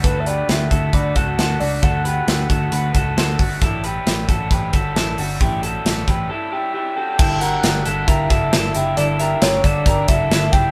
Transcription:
<<
  \new Staff \with { instrumentName = "Soft synth lead" } { \time 4/4 \key g \lydian \tempo 4 = 134 b'16. e''32 d''8 e''4 d''8 fis''8 fis''8 d''8 | fis''4. fis''4. r4 | r1 | r2. r8 g''8~ |
g''8 fis''4. e''2 | d''8 e''8 cis''8 d''4 e''4 g''8 | }
  \new Staff \with { instrumentName = "Clean electric guitar" } { \time 4/4 \key g \lydian <fis' a'>8 <g' b'>4 <fis' a'>8 <fis' b'>8 <fis' a'>8 <fis' a'>8 <d' fis'>8 | <fis' a'>8 <g' b'>4 <fis' a'>8 <fis' b'>8 <fis' a'>8 <fis' a'>8 <d' fis'>8 | <e' a'>8 <g' b'>4 <fis' a'>8 <g' b'>8 <fis' a'>8 <e' a'>8 <d' fis'>8 | <e' g'>8 <fis' a'>4 <g' b'>8 <e' a'>8 <e' g'>8 <e' g'>8 <fis' a'>8 |
<e' a'>8 <g' bes'>4 <fis' a'>8 <g' bes'>8 <fis' a'>8 <e' a'>8 <e' g'>8 | <e' a'>8 <g' bes'>4 <fis' a'>8 <g' bes'>8 <fis' a'>8 <e' a'>8 <e' g'>8 | }
  \new Staff \with { instrumentName = "Overdriven electric guitar" } { \time 4/4 \key g \lydian <d a b fis'>8 <a b fis'>8 <d a b fis'>8 <a b fis'>8 <d a b fis'>8 <a b fis'>8 <d a b fis'>8 <a b fis'>8 | <d a b fis'>8 <a b fis'>8 <d a b fis'>8 <a b fis'>8 <d a b fis'>8 <a b fis'>8 <d a b fis'>8 <a b fis'>8 | <a, e g cis' e'>8 <g cis' e'>8 <e g cis' e'>8 <g cis' e'>8 <a, e g cis' e'>8 <g cis' e'>8 <e g cis' e'>8 <g cis' e'>8 | <a, e g cis' e'>8 <g cis' e'>8 <e g cis' e'>8 <g cis' e'>8 <a, e g cis' e'>8 <g cis' e'>8 <e g cis' e'>8 <g cis' e'>8 |
<g bes d' e'>8 <bes d' e'>8 <g bes d' e'>8 <bes d' e'>8 <g bes d' e'>8 <bes d' e'>8 <g bes d' e'>8 <bes d' e'>8 | <g bes d' e'>8 <bes d' e'>8 <g bes d' e'>8 <bes d' e'>8 <g bes d' e'>8 <bes d' e'>8 <g bes d' e'>8 <bes d' e'>8 | }
  \new Staff \with { instrumentName = "Picked electric bass" } { \clef bass \time 4/4 \key g \lydian d,4 d,8 d,8 d,8 cis,8 d,8 cis,8 | d,4 d,8 d,8 d,8 cis,8 d,8 g,,8 | a,,4 a,,8 a,,8 a,,8 g,,8 a,,8 g,,8 | a,,4 a,,8 a,,8 r2 |
g,,4 g,,8 g,,8 g,,8 fis,,8 g,,8 fis,,8 | g,,4 g,,8 g,,8 g,,8 fis,,8 g,,8 fis,,8 | }
  \new DrumStaff \with { instrumentName = "Drums" } \drummode { \time 4/4 <hh bd>8 hh8 <hh sn>8 <hh bd>8 <hh bd>8 <hh bd>8 <hh sn>8 hho8 | <hh bd>8 hh8 <hh sn>8 <hh bd>8 hh8 <hh bd>8 <hh sn>8 <hho bd>8 | <hh bd>8 hh8 <hh sn>8 <hh bd>8 <hh bd>8 <hh bd>8 <hh sn>8 hho8 | <hh bd>8 hh8 <hh sn>8 <hh bd>8 r4 r4 |
<cymc bd>8 hh8 <hh sn>8 hh8 <hh bd>8 <hh bd>8 <hh sn>8 hh8 | hh8 hh8 <hh sn>8 <hh bd>8 <hh bd>8 <hh bd>8 <hh sn>8 <hh bd>8 | }
>>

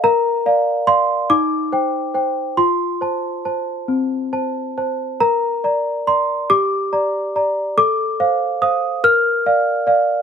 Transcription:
\new Staff \with { instrumentName = "Celesta" } { \time 6/8 \key bes \major \tempo 4. = 47 << { bes''4 c'''8 d'''4. | c'''4. r4. | bes''4 c'''8 d'''4. | d'''4 ees'''8 f'''4. | } \\ { bes'8 <d'' f''>8 <d'' f''>8 ees'8 <c'' g''>8 <c'' g''>8 | f'8 <c'' a''>8 <c'' a''>8 c'8 <c'' a''>8 <c'' a''>8 | bes'8 <d'' bes''>8 <d'' bes''>8 g'8 <d'' bes''>8 <d'' bes''>8 | a'8 <c'' f''>8 <c'' f''>8 bes'8 <d'' f''>8 <d'' f''>8 | } >> }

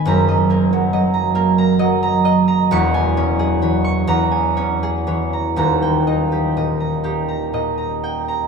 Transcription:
<<
  \new Staff \with { instrumentName = "Harp" } { \time 6/8 \key dis \phrygian \tempo 4. = 42 << { ais''2. | cis'''4. ais''4. | ais''2. | } \\ { dis''16 dis''16 ais'16 fis16 dis''16 ais''16 ais'16 ais''16 dis''16 ais''16 dis''16 ais''16 | r16 gis''16 cis''16 gis'16 cis''16 cis'''8 gis''16 cis''16 gis'16 cis''16 ais''16~ | ais''16 g''16 dis''16 g'16 dis''16 ais''16 g'16 ais''16 dis''16 ais''16 g''16 ais''16 | } >> }
  \new Staff \with { instrumentName = "Harp" } { \clef bass \time 6/8 \key dis \phrygian <fis,, fis,>8 ais8 fis8 ais8 fis4 | <e,, e,>8 cis'8 e8 e,8 cis'8 e8 | <dis,, dis,>8 dis'8 ais,8 dis'8 ais,4 | }
>>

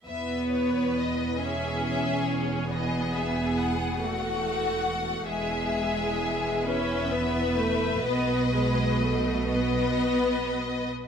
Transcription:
<<
  \new Staff \with { instrumentName = "Violin section" } { \time 6/8 \key e \major \tempo 4. = 44 e''8 cis''8 dis''8 e''8 e''8 cis''8 | dis''8 e''8 fis''8 fis''4. | e''4. e''4. | dis''4. dis''4. | }
  \new Staff \with { instrumentName = "Violin section" } { \time 6/8 \key e \major b'4. gis'4. | gis'4. fis'4. | gis'4. b'4.~ | b'4. b'4. | }
  \new Staff \with { instrumentName = "Viola section" } { \time 6/8 \key e \major b4. cis'4. | b4. a4. | gis4. cis'8 b8 a8 | b8 gis8 a8 b4. | }
  \new Staff \with { instrumentName = "Cello section" } { \clef bass \time 6/8 \key e \major e,2.~ | e,2. | e,2. | b,2. | }
  \new Staff \with { instrumentName = "Double bass section" } { \clef bass \time 6/8 \key e \major e,,2.~ | e,,2. | e,,2. | b,,2. | }
>>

